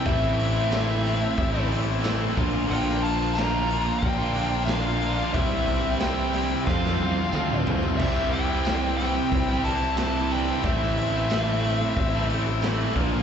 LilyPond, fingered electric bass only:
\new Staff \with { instrumentName = "Fingered electric bass" } { \clef bass \time 4/4 \key a \phrygian \tempo 4 = 91 a,,2 a,,4. bes,,8 | bes,,2 bes,,2 | c,2 f,8 e,8 d,8 c,8 | c,2 c,2 |
a,,2 a,,4. bes,,8 | }